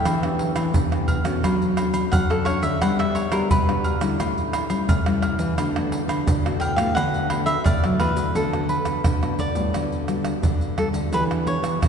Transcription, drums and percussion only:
0.05 pandeiro, tamborim, low agogo, shaker, surdo
0.23 pandeiro, tamborim, shaker
0.39 pandeiro
0.56 pandeiro, tamborim, low agogo, shaker
0.74 pandeiro, shaker, surdo
0.92 pandeiro, tamborim, shaker
1.08 pandeiro, high agogo, surdo
1.25 pandeiro, tamborim, shaker
1.44 pandeiro, tamborim, low agogo, shaker, surdo
1.62 pandeiro, shaker
1.77 pandeiro, tamborim, low agogo, shaker
1.94 pandeiro, low agogo, shaker
2.13 pandeiro, high agogo, shaker, surdo
2.31 pandeiro, tamborim, shaker
2.46 pandeiro, tamborim, high agogo
2.63 pandeiro, shaker
2.82 pandeiro, tamborim, low agogo, shaker, surdo
3.00 pandeiro, tamborim, shaker
3.15 pandeiro
3.32 pandeiro, tamborim, low agogo, shaker
3.51 pandeiro, shaker, surdo
3.69 pandeiro, tamborim, shaker
3.84 pandeiro, high agogo
4.01 pandeiro, tamborim, shaker
4.20 pandeiro, tamborim, low agogo, shaker, surdo
4.38 pandeiro, shaker
4.53 pandeiro, tamborim, low agogo, shaker
4.70 pandeiro, low agogo, shaker
4.89 pandeiro, high agogo, shaker, surdo
5.06 pandeiro, tamborim, shaker
5.22 pandeiro, tamborim, high agogo
5.39 pandeiro, shaker
5.58 pandeiro, tamborim, low agogo, shaker, surdo
5.76 pandeiro, tamborim, shaker
5.92 pandeiro
6.09 pandeiro, tamborim, low agogo, shaker
6.27 pandeiro, shaker, surdo
6.46 pandeiro, tamborim, shaker
6.61 pandeiro, high agogo
6.78 pandeiro, tamborim, shaker
6.97 pandeiro, tamborim, low agogo, shaker, surdo
7.14 pandeiro, shaker
7.30 pandeiro, tamborim, low agogo
7.47 pandeiro, low agogo, shaker
7.66 pandeiro, high agogo, shaker, surdo
7.84 pandeiro, tamborim, shaker
8.00 pandeiro, tamborim, high agogo
8.17 pandeiro, shaker
8.35 pandeiro, shaker, surdo
8.53 pandeiro, tamborim, shaker
8.69 pandeiro
8.85 pandeiro, tamborim, shaker, surdo
9.04 pandeiro, tamborim, shaker, surdo
9.23 pandeiro, tamborim, shaker
9.39 pandeiro, shaker
9.55 pandeiro, shaker, surdo
9.74 pandeiro, tamborim, shaker, surdo
9.92 pandeiro, shaker
10.08 pandeiro, tamborim, shaker
10.25 pandeiro, tamborim, shaker, surdo
10.43 pandeiro, shaker, surdo
10.61 pandeiro, shaker
10.78 pandeiro, tamborim
10.94 pandeiro, shaker, surdo
11.13 pandeiro, shaker, surdo
11.31 pandeiro, tamborim, shaker
11.47 pandeiro
11.64 pandeiro, tamborim, shaker, surdo
11.83 pandeiro, tamborim, shaker, surdo

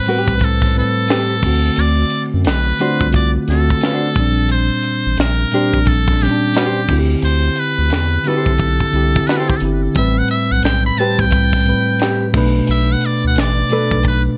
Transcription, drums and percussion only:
0.06 closed hi-hat
0.28 kick
0.39 kick, closed hi-hat
0.62 kick, snare
0.75 closed hi-hat
1.08 finger snap, snare, closed hi-hat
1.43 kick, crash
1.76 closed hi-hat
2.10 closed hi-hat
2.45 finger snap, snare, closed hi-hat
2.79 closed hi-hat
3.01 kick
3.12 kick, closed hi-hat
3.48 snare, closed hi-hat
3.70 kick
3.81 finger snap, snare, closed hi-hat
4.15 kick, open hi-hat
4.49 closed hi-hat
4.83 closed hi-hat
5.17 finger snap, snare, closed hi-hat
5.52 closed hi-hat
5.73 kick
5.85 kick, closed hi-hat
6.08 kick, snare
6.21 snare, closed hi-hat
6.54 finger snap, snare, closed hi-hat
6.89 kick, crash
7.22 closed hi-hat
7.56 closed hi-hat
7.90 finger snap, snare, closed hi-hat
8.24 closed hi-hat
8.46 kick
8.58 kick, closed hi-hat
8.80 kick
8.93 closed hi-hat
9.16 kick
9.27 finger snap, snare, closed hi-hat
9.50 kick
9.60 closed hi-hat
9.95 kick, closed hi-hat
10.28 closed hi-hat
10.63 finger snap, snare, closed hi-hat
10.97 closed hi-hat
11.19 kick
11.31 kick, closed hi-hat
11.53 kick, snare
11.66 closed hi-hat
11.99 finger snap, snare, closed hi-hat
12.34 kick, crash
12.67 closed hi-hat
13.01 closed hi-hat
13.36 finger snap, snare, closed hi-hat
13.69 closed hi-hat
13.91 kick
14.03 kick, closed hi-hat

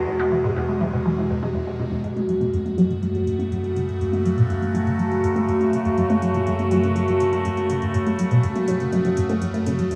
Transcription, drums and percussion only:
2.04 closed hi-hat
2.17 closed hi-hat
2.29 closed hi-hat, high tom
2.41 closed hi-hat
2.54 closed hi-hat
2.66 closed hi-hat
2.78 closed hi-hat
2.91 closed hi-hat, high tom
3.03 closed hi-hat
3.15 closed hi-hat
3.27 closed hi-hat
3.40 closed hi-hat
3.52 closed hi-hat, high tom
3.64 closed hi-hat
3.76 closed hi-hat
3.89 closed hi-hat
4.01 closed hi-hat
4.13 closed hi-hat, high tom
4.26 closed hi-hat
4.38 closed hi-hat
4.50 closed hi-hat
4.62 closed hi-hat
4.75 closed hi-hat, high tom
4.87 closed hi-hat
4.99 closed hi-hat
5.12 closed hi-hat
5.24 closed hi-hat
5.36 closed hi-hat, high tom
5.49 closed hi-hat
5.61 closed hi-hat
5.73 closed hi-hat
5.85 closed hi-hat
5.98 closed hi-hat, high tom
6.10 closed hi-hat
6.22 closed hi-hat
6.34 closed hi-hat
6.47 closed hi-hat
6.59 closed hi-hat, high tom
6.71 closed hi-hat
6.84 closed hi-hat
6.96 closed hi-hat
7.08 closed hi-hat
7.20 closed hi-hat, high tom
7.33 closed hi-hat
7.45 closed hi-hat
7.57 closed hi-hat
7.70 closed hi-hat
7.82 closed hi-hat, high tom
7.94 closed hi-hat
8.07 closed hi-hat
8.19 closed hi-hat
8.31 closed hi-hat
8.43 closed hi-hat, high tom
8.56 closed hi-hat
8.68 closed hi-hat
8.80 closed hi-hat
8.93 closed hi-hat
9.05 closed hi-hat, high tom
9.17 closed hi-hat
9.29 closed hi-hat
9.42 closed hi-hat
9.54 closed hi-hat
9.66 closed hi-hat, high tom
9.79 closed hi-hat
9.91 closed hi-hat

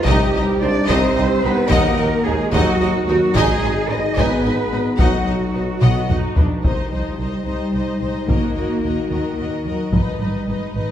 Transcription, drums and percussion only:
0.05 taiko
0.89 taiko
1.71 taiko
2.54 taiko
3.35 taiko
4.17 taiko
4.99 taiko
5.81 taiko mid
6.09 taiko low-mid
6.36 taiko low
6.64 taiko
8.28 taiko
9.93 taiko

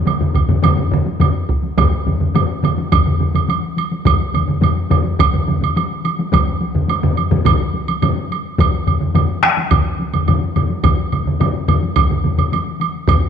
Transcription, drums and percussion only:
0.06 taiko low-mid, taiko mid, taiko high, high woodblock
0.20 taiko low-mid, taiko mid
0.35 taiko, taiko low-mid, taiko mid, high woodblock
0.49 taiko low-mid, taiko mid, taiko high
0.62 taiko low-mid, taiko mid, taiko high, high woodblock
0.77 taiko low-mid, taiko mid
0.92 taiko low-mid, taiko mid
1.06 taiko high
1.20 taiko low-mid, taiko mid, taiko high, high woodblock
1.49 taiko
1.63 taiko high
1.78 taiko, taiko low-mid, taiko mid, taiko high, high woodblock
2.06 taiko low-mid, taiko mid, taiko high
2.20 taiko low-mid, taiko mid
2.35 taiko low-mid, taiko mid, taiko high, high woodblock
2.63 taiko low-mid, taiko mid, taiko high, high woodblock
2.78 taiko high
2.92 taiko, taiko low-mid, taiko mid, taiko high, high woodblock
3.06 taiko low-mid, taiko mid
3.20 taiko low-mid, taiko mid, taiko high
3.34 taiko low-mid, taiko mid, taiko high, high woodblock
3.49 taiko high, high woodblock
3.77 taiko high, high woodblock
3.91 taiko high
4.05 taiko, taiko low-mid, taiko mid, taiko high, high woodblock
4.34 taiko low-mid, taiko mid, taiko high, high woodblock
4.48 taiko low-mid, taiko mid
4.62 taiko low-mid, taiko mid, taiko high, high woodblock
4.90 taiko low-mid, taiko mid, taiko high, high woodblock
5.05 taiko high
5.19 taiko, taiko low-mid, taiko mid, taiko high, high woodblock
5.33 taiko low-mid, taiko mid
5.47 taiko low-mid, taiko mid, taiko high
5.61 taiko low-mid, taiko mid, taiko high, high woodblock
5.76 taiko high, high woodblock
6.04 taiko high, high woodblock
6.19 taiko high
6.32 taiko, taiko low-mid, taiko mid, taiko high, high woodblock
6.61 taiko high
6.75 taiko low-mid, taiko mid
6.89 taiko high, high woodblock
7.03 taiko low-mid, taiko mid
7.17 taiko high, high woodblock
7.31 taiko low-mid, taiko mid, taiko high
7.45 taiko, taiko low-mid, taiko mid, taiko high, high woodblock
7.74 taiko high
7.88 taiko high, high woodblock
8.02 taiko low-mid, taiko mid, taiko high, high woodblock
8.31 taiko high, high woodblock
8.58 taiko, taiko low-mid, taiko mid, taiko high, high woodblock
8.87 taiko low-mid, taiko mid, taiko high, high woodblock
9.00 taiko low-mid, taiko mid
9.15 taiko low-mid, taiko mid, taiko high, high woodblock
9.43 taiko rim, taiko high, high woodblock
9.57 taiko high
9.71 taiko, taiko low-mid, taiko mid, taiko high, high woodblock
10.00 taiko high
10.14 taiko low-mid, taiko mid, taiko high, high woodblock
10.28 taiko low-mid, taiko mid, taiko high, high woodblock
10.56 taiko low-mid, taiko mid, taiko high, high woodblock
10.70 taiko high
10.84 taiko, taiko low-mid, taiko mid, taiko high, high woodblock
11.12 taiko low-mid, taiko mid, taiko high, high woodblock
11.26 taiko low-mid, taiko mid
11.41 taiko low-mid, taiko mid, taiko high, high woodblock
11.68 taiko low-mid, taiko mid, taiko high, high woodblock
11.83 taiko high
11.96 taiko, taiko low-mid, taiko mid, taiko high, high woodblock
12.10 taiko low-mid, taiko mid
12.24 taiko low-mid, taiko mid, taiko high
12.38 taiko low-mid, taiko mid, taiko high, high woodblock
12.52 taiko high, high woodblock
12.80 taiko high, high woodblock
13.07 taiko, taiko low-mid, taiko mid, taiko high, high woodblock

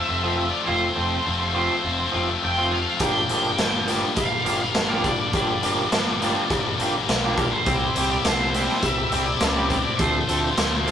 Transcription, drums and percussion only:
3.00 kick, closed hi-hat
3.29 closed hi-hat
3.58 snare, closed hi-hat
3.88 closed hi-hat
4.16 kick, closed hi-hat
4.46 closed hi-hat
4.75 snare, closed hi-hat
5.04 kick, closed hi-hat
5.33 kick, closed hi-hat
5.63 closed hi-hat
5.92 snare, closed hi-hat
6.22 snare, closed hi-hat
6.50 kick, closed hi-hat
6.80 closed hi-hat
7.09 snare, closed hi-hat
7.37 kick, closed hi-hat
7.66 kick, closed hi-hat
7.96 closed hi-hat
8.25 snare, closed hi-hat
8.54 snare, closed hi-hat
8.69 snare
8.83 kick, closed hi-hat
9.12 closed hi-hat
9.40 snare, closed hi-hat
9.70 kick, closed hi-hat
9.99 kick, closed hi-hat
10.29 closed hi-hat
10.57 snare, closed hi-hat
10.88 closed hi-hat

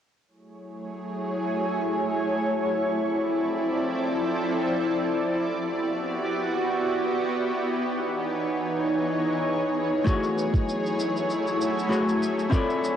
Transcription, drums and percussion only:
10.07 kick, cabasa
10.24 cabasa
10.38 cabasa
10.54 kick, cabasa
10.69 cabasa
10.86 cabasa
10.99 cabasa
11.16 cabasa
11.30 cabasa
11.47 cabasa
11.61 cabasa
11.79 cabasa
11.92 cabasa
12.08 cabasa
12.22 cabasa
12.39 cabasa
12.52 kick, cabasa
12.70 cabasa
12.84 cabasa

